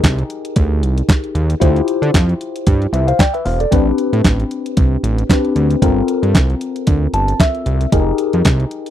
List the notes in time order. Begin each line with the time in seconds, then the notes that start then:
Already playing: D#4 G4 G#4 A#4
0.04 C2, kick, snare, clap, closed hi-hat
0.18 closed hi-hat
0.30 closed hi-hat
0.45 closed hi-hat
0.56 D2, kick, closed hi-hat
0.82 C2, closed hi-hat
0.98 closed hi-hat
1.09 kick, snare, clap, closed hi-hat
1.24 closed hi-hat
1.35 D#2, closed hi-hat
1.50 closed hi-hat
1.60 D2 E4 F4 G4 C5, kick, closed hi-hat
1.76 closed hi-hat
1.88 closed hi-hat
2.02 D3, closed hi-hat
2.14 F2, kick, snare, clap, closed hi-hat
2.29 closed hi-hat
2.41 closed hi-hat
2.56 closed hi-hat
2.67 G2, kick, closed hi-hat
2.82 closed hi-hat
2.93 C2 B4 E5, closed hi-hat
3.08 C5 F5, closed hi-hat
3.19 D5 G5, kick, snare, clap, closed hi-hat
3.34 B4 E5, closed hi-hat
3.45 E1 C5 F5, open hi-hat
3.60 A4 D5, closed hi-hat
3.71 A1 C4 D4 G4 B4, kick, closed hi-hat
3.98 closed hi-hat
4.13 A2, closed hi-hat
4.24 A1, kick, snare, clap, closed hi-hat
4.40 closed hi-hat
4.51 closed hi-hat
4.66 closed hi-hat
4.77 C2, kick, closed hi-hat
5.03 A1, closed hi-hat
5.18 closed hi-hat
5.29 C4 D4 G4 B4, kick, snare, clap, closed hi-hat
5.45 closed hi-hat
5.56 D2, closed hi-hat
5.71 closed hi-hat
5.82 G1 C4 F4 A4 A#4, kick, closed hi-hat
6.08 closed hi-hat
6.23 G2, closed hi-hat
6.35 C2, kick, snare, clap, closed hi-hat
6.50 closed hi-hat
6.61 closed hi-hat
6.76 closed hi-hat
6.87 D2, kick, closed hi-hat
7.13 G1 A5, closed hi-hat
7.28 closed hi-hat
7.40 E5, kick, snare, clap, closed hi-hat
7.55 closed hi-hat
7.66 C2, closed hi-hat
7.81 closed hi-hat
7.92 F1 D#4 G4 G#4 A#4, kick, closed hi-hat
8.18 closed hi-hat
8.33 F2, closed hi-hat
8.45 C2, kick, snare, clap, closed hi-hat
8.60 closed hi-hat
8.71 closed hi-hat
8.86 closed hi-hat